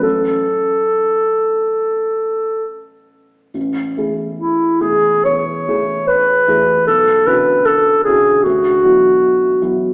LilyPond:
<<
  \new Staff \with { instrumentName = "Clarinet" } { \time 4/4 \key a \major \tempo 4 = 74 a'2. r4 | r4 e'8 gis'8 cis''4 b'4 | a'8 b'8 a'8 gis'8 fis'2 | }
  \new Staff \with { instrumentName = "Grand piano" } { \time 4/4 \key a \major <a,, fis a cis' a'>1 | a,,8 <e a e' gis'>4 <e a e' gis'>8 e,8 <e a e' gis'>4 <e a e' gis'>8 | b,,8 <d cis' e' fis'>4 <d cis' e' fis'>8 d,8 <fis b e' fis'>4 <fis b e' fis'>8 | }
>>